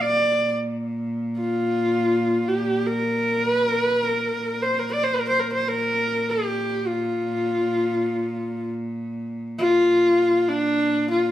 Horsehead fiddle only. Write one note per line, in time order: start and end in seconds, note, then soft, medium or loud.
0.01 0.54 D5 medium
1.37 2.50 F4 medium
2.48 2.88 G4 medium
2.87 3.49 A#4 medium
3.49 3.65 B4 medium
3.65 3.83 A#4 medium
3.83 4.00 B4 medium
4.00 4.64 A#4 medium
4.62 4.81 C5 medium
4.79 4.95 A#4 medium
4.93 5.05 D5 medium
5.03 5.17 C5 medium
5.16 5.26 A#4 medium
5.29 5.41 C5 medium
5.40 5.51 A#4 medium
5.53 5.70 C5 medium
5.69 6.31 A#4 medium
6.29 6.89 G4 medium
6.87 8.70 F4 medium
9.59 10.49 F4 medium
10.48 11.10 D4 medium
11.11 11.31 F4 medium